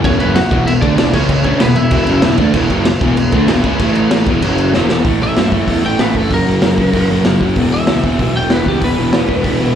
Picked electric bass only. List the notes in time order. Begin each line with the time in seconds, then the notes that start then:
0.04 E1
0.20 F#1
0.35 muted picked electric bass stroke
0.51 E1
0.67 E1
0.82 D2
0.99 E1
1.14 C#2
1.45 D2
1.61 E1
1.77 E1
1.91 E1
2.08 F#1
2.23 E1
2.39 D2
2.54 E1
2.70 F#1
2.87 muted picked electric bass stroke
3.02 E1
3.18 E1
3.33 D2
3.48 E1
3.64 C#2
3.80 A1
4.27 E1
4.43 F#1
4.74 E1
5.05 A1
5.22 A1
5.38 F#2
5.52 A1
5.68 E2
5.84 A1
5.99 A1
6.15 F#1
6.31 F#1
6.48 F#1
6.64 F#1
6.78 F#1
6.94 F#1
7.10 F#1
7.26 F#1
7.41 F#1
7.57 E1
7.73 E1
7.88 C#2
8.04 E1
8.19 B1
8.35 E1
8.52 E1
8.66 C#2
8.82 E1
8.99 E1
9.14 E1
9.29 E1
9.45 E1
9.62 E1